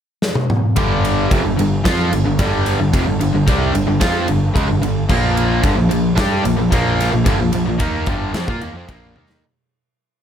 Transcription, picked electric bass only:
0.77 G1
1.32 F1
1.45 G1
1.58 G1
1.86 F2
2.12 G1
2.26 G1
2.39 G1
2.81 G1
2.94 F1
3.07 G1
3.20 G1
3.34 G1
3.48 C2
3.75 G1
3.88 G1
4.01 F2
4.29 G1
4.55 C#2
4.70 G1
4.83 G1
5.10 A#1
5.64 G1
5.78 A#1
5.92 A#1
6.17 G2
6.45 A#1
6.57 A#1
6.72 A#1
7.13 A#1
7.27 G1
7.39 A#1
7.54 A#1
7.67 A#1
7.80 D#2
8.08 G1
8.35 F2
8.48 A#2
8.62 D#2
8.74 F2
8.89 A#1
9.16 D#2

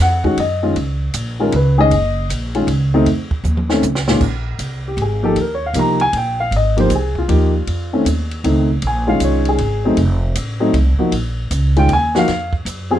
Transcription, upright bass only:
0.00 F2
0.37 F#2
0.76 C#2
1.14 A#1
1.53 C#2
1.91 F#1
2.30 A#1
2.67 C#2
3.06 F2
3.44 D#2
3.82 C#2
4.21 A#1
4.59 C2
4.97 G#1
5.36 D#2
5.73 C2
6.13 A#1
6.51 G#1
6.90 C2
7.29 D#2
7.67 F2
8.05 D#2
8.44 C#2
8.82 A#1
9.20 C2
9.59 G#1
9.97 F1
10.35 A1
10.73 C2
11.00 muted upright bass stroke
11.12 A#1
11.51 C#2
11.88 D#2
12.28 F2
12.65 F#2

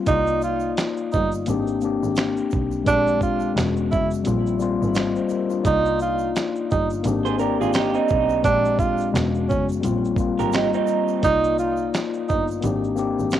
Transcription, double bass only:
0.07 C2
1.14 G1
1.48 G#1
2.03 G#1
2.53 B1
2.86 A#1
3.56 E1
3.93 F#1
4.27 A#1
4.82 G#1
5.65 C2
6.72 G1
7.05 G#1
7.61 G#1
8.11 B1
8.44 A#1
9.14 E1
9.51 F#1
9.84 A#1
10.40 G#1
11.23 C2
12.30 G1
12.63 G#1
13.19 G#1

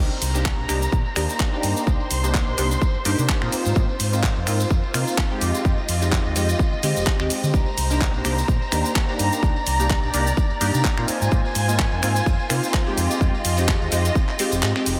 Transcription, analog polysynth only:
0.00 G4
0.34 A#3 D4 D#4 G4
0.68 A#3 D4 D#4 G4
1.15 A#3 D4 D#4 G4
1.52 A#3 D4 D#4 G4
1.87 A#3 D4 D#4 G4
2.23 A#3 D4 D#4 G4
2.57 A#3 D4 D#4 G4
3.05 A#3 D4 D#4 G4
3.41 A#3 C4 D#4 F4
3.76 A#3 C4 D#4 F4
4.12 A#3 C4 D#4 F4
4.47 A#3 C4 D#4 F4
4.94 A#3 C4 D#4 F4
5.31 G#3 C4 D#4 G4
5.64 G#3 C4 D#4 G4
6.01 G#3 C4 D#4 G4
6.36 G#3 C4 D#4 G4
6.83 G#3 C4 D#4 G4
7.20 G#3 C4 D#4 G4
7.53 A#3 D4 D#4 G4
7.90 A#3 D4 D#4 G4
8.25 A#3 D4 D#4 G4
8.72 A#3 D4 D#4 G4
9.09 A#3 D4 D#4 G4
9.43 A#3 D4 D#4 G4
9.79 A#3 D4 D#4 G4
10.13 A#3 D4 D#4 G4
10.61 A#3 D4 D#4 G4
10.97 A#3 C4 D#4 F4
11.32 A#3 C4 D#4 F4
11.68 A#3 C4 D#4 F4
12.02 A#3 C4 D#4 F4
12.49 A#3 C4 D#4 F4
12.87 G#3 C4 D#4 G4
13.21 G#3 C4 D#4 G4
13.58 G#3 C4 D#4 G4
13.92 G#3 C4 D#4 G4
14.39 G#3 C4 D#4 G4
14.76 G#3 C4 D#4 G4

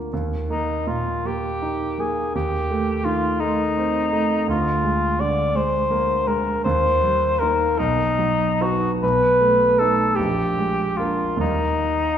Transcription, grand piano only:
Already playing: D3 A#3 F4
0.13 D#2
0.50 A#3
0.87 A#2
1.25 A#3
1.62 D#4
1.98 A#3
2.35 D#2
2.70 A3
3.05 D#3
3.41 A3
3.77 C4
4.12 A3
4.47 D2
4.84 G#3
5.20 D3
5.55 G#3
5.90 A#3
6.27 G#3
6.65 D#2
7.03 G3
7.41 A#3 D#4
7.79 B1
8.19 F#3
8.61 B3 D#4
9.03 B1
9.41 A3
9.80 A3 D#4
10.19 A#1
10.58 G#3
10.99 A#3 D4
11.37 D#2 G3 A#3 D#4

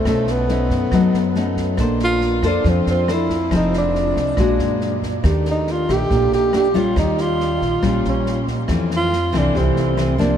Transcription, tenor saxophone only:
0.08 A3
0.31 B3
2.04 F4
2.47 D4
2.70 C4
2.91 C4
3.13 E4
3.56 D#4
3.78 D4
5.51 D#4
5.72 F4
5.93 G4
6.34 G4
6.57 G4
6.78 F4
6.99 D#4
7.22 F4
7.88 F4
8.10 C#4
8.96 F4
9.38 D4
9.59 C4

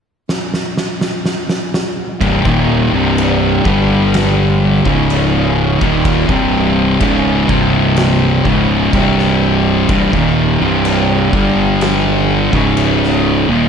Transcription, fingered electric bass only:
2.21 C1
2.45 D#1
2.93 C1
3.65 G1
4.85 C#1
5.81 D#1
6.30 C1
7.01 C#1
7.49 C1
8.46 C#1
8.94 C1
9.89 C1
10.13 D#1
10.62 C1
11.34 G1
12.53 C#1
13.49 D#1

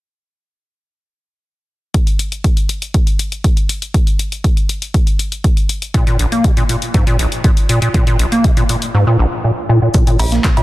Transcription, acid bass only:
5.94 A#2
6.07 A#2
6.19 A#1
6.32 A#3
6.44 A#2
6.57 A#2
6.69 A#2
6.94 G#2
7.07 A#2
7.19 A#1
7.44 A#2
7.69 A#2
7.82 A#2
7.94 A#2
8.07 A#2
8.19 A#1
8.32 A#3
8.44 A#2
8.57 A#2
8.69 A#2
8.94 G#2
9.07 A#2
9.19 A#1
9.44 A#2
9.69 A#2
9.82 A#2
9.94 A#2
10.07 A#2
10.19 A#1
10.32 A#3
10.44 A#2
10.57 A#2

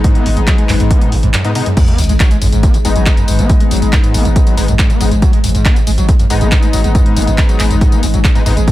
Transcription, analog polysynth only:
Already playing: G#3 B3 D#4
1.45 G#3 B3 D#4
1.55 G#3 B3 D#4
2.85 G#3 B3 D#4
4.57 G#3 B3 D#4
5.01 G#3 B3 D#4
6.30 G#3 B3 D#4
8.35 G#3 B3 D#4
8.46 G#3 B3 D#4

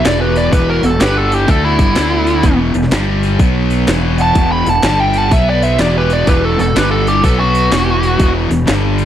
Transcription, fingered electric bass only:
0.05 E1
0.53 E1
0.83 E1
1.01 G1
1.49 D2
1.79 G1
1.97 D2
2.44 E1
2.75 E1
2.92 G1
3.40 B1
3.88 E1
4.36 E1
4.67 E1
4.84 G1
5.32 B1
5.80 E1
6.28 E1
6.60 E1
6.77 G1
7.24 B1
7.73 E1
8.20 E1
8.50 E1
8.69 G1

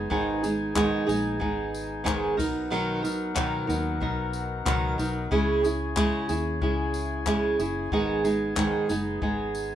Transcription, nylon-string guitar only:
Already playing: G#4
0.10 G#2 D#3 G#3 B3 D#4 G#4
0.43 G#3 B3 D#4 G#4
0.75 G#2 D#3 G#3 B3 D#4 G#4
1.07 G#3 B3 D#4 G#4
1.39 G#3 B3 D#4 G#4
2.04 G#2 D#3 G#3 B3 D#4 G#4
2.37 F#3 B3 D#4 A#4
2.70 B2 D#3 F#3 B3 D#4 A#4
3.02 F#3 B3 D#4 A#4
3.35 B2 D#3 F#3 B3 D#4 A#4
3.67 F#3 B3 D#4 A#4
4.00 F#3 B3 D#4 A#4
4.65 B2 D#3 F#3 B3 D#4 A#4
4.98 F#3 B3 D#4 A#4
5.31 C#3 G#3 C#4 E4 G#4
5.63 C#4 E4 G#4
5.96 C#3 G#3 C#4 E4 G#4
6.29 C#4 E4 G#4
6.61 G#3 C#4 E4 G#4
7.26 C#3 G#3 C#4 E4 G#4
7.59 C#4 E4 G#4
7.92 G#2 D#3 G#3 B3 D#4 G#4
8.24 G#3 B3 D#4 G#4
8.55 G#2 D#3 G#3 B3 D#4 G#4
8.89 G#3 B3 D#4 G#4
9.22 G#3 B3 D#4 G#4

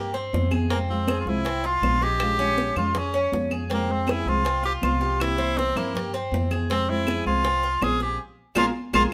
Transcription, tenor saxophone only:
Already playing: A#3
0.70 A#3
0.89 C4
1.20 F4
1.28 E4
1.66 F4
2.03 G4
2.78 F4
2.98 C#4
3.73 A#3
3.92 C4
4.10 E4
4.28 F4
4.65 G4
4.84 F4
5.21 E4
5.58 C4
5.77 A#3
6.71 C4
6.90 E4
7.27 F4
7.83 G#4
8.02 G4
8.58 F4
8.95 F4

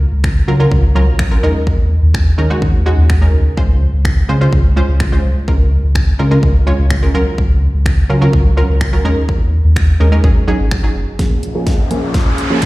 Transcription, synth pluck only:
Already playing: F#3 C#4 F4 A#4
0.48 F#3 C#4 F4 A#4
0.60 F#3 C#4 F4 A#4
0.95 F#3 C#4 F4 A#4
1.31 F#3 C#4 F4 A#4
1.43 G#3 C#4 D#4 A#4
2.38 G#3 C#4 D#4 A#4
2.50 G#3 C#4 D#4 F#4
2.86 G#3 C#4 D#4 F#4
3.21 G#3 C#4 D#4 A#4
3.57 G#3 C#4 F4 C5
4.29 G#3 C#4 F4 C5
4.41 G#3 C#4 F4 C5
4.76 G#3 C#4 F4 C5
5.12 G#3 C#4 F4 C5
5.48 G#3 C#4 F4 A#4
6.19 G#3 C#4 F4 A#4
6.31 G#3 C#4 F4 A#4
6.67 G#3 C#4 F4 C#5
7.02 G#3 C#4 F4 A#4
7.14 F#3 C#4 F4 A#4
8.09 F#3 C#4 F4 A#4
8.21 F#3 C#4 F4 A#4
8.57 F#3 C#4 F4 A#4
8.93 F#3 C#4 F4 A#4
9.05 G#3 C#4 D#4 A#4
10.00 G#3 C#4 D#4 A#4
10.12 G#3 C#4 D#4 A#4
10.24 F#3 C#4 D#4 G#4
10.48 F#3 C#4 D#4 G#4
10.83 F#3 C#4 D#4 G#4
11.19 F3 A#3 C#4 G#4
11.55 F3 A#3 C#4 G#4
11.91 F3 A#3 C#4 G#4
12.50 F3 A#3 C#4 G#4

